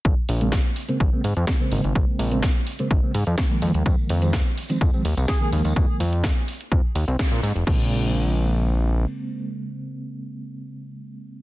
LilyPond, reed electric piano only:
\new Staff \with { instrumentName = "Reed electric piano" } { \clef bass \time 4/4 \key bes \minor \tempo 4 = 126 r8. <des aes bes c'>16 r8. <des aes bes c'>16 r16 <des aes bes c'>16 r8. <des aes bes c'>8.~ | <des aes bes c'>8. <des aes bes c'>16 r8. <des aes bes c'>16 r16 <des aes bes c'>16 r8. <ees f aes bes>8.~ | <ees f aes bes>8. <ees f aes c'>16 r8. <ees f aes c'>16 r16 <ees f aes c'>16 r8. <ees f aes bes>8.~ | <ees f aes bes>8 r2. r8 |
<des aes bes c'>1~ | <des aes bes c'>1 | }